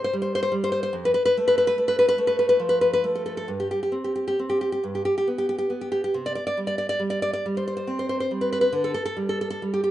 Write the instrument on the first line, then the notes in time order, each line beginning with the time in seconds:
nylon-string guitar
0.04 C5
0.13 G3
0.22 C5
0.35 C5
0.43 C5
0.52 G3
0.64 C5
0.72 C5
0.83 C5
0.93 F2
1.05 B4
1.14 B4
1.25 B4
1.37 A3
1.48 B4
1.58 B4
1.67 B4
1.78 A3
1.88 B4
1.99 B4
2.08 B4
2.18 A3
2.27 B4
2.39 B4
2.49 B4
2.60 F3
2.69 B4
2.81 B4
2.93 B4
3.04 A3
3.15 A4
3.26 A4
3.37 A4
3.48 G2
3.60 G4
3.71 G4
3.83 G4
3.92 C4
4.04 G4
4.16 G4
4.28 G4
4.39 C4
4.50 G4
4.61 G4
4.72 G4
4.84 G2
4.95 G4
5.05 G4
5.18 G4
5.27 B3
5.38 G4
5.49 G4
5.58 G4
5.70 B3
5.81 G4
5.92 G4
6.04 G4
6.14 C3
6.26 D5
6.35 D5
6.47 D5
6.57 G3
6.67 D5
6.78 D5
6.89 D5
6.99 G3
7.10 D5
7.22 D5
7.33 D5
7.46 G3
7.57 C5
7.68 C5
7.77 C5
7.87 C4
7.99 C5
8.09 C5
8.20 C5
8.31 G3
8.41 B4
8.53 B4
8.61 B4
8.72 D3
8.84 A4
8.94 A4
9.06 A4
9.17 G3
9.29 A4
9.41 A4
9.50 A4
9.62 G3
9.74 G4
9.84 G4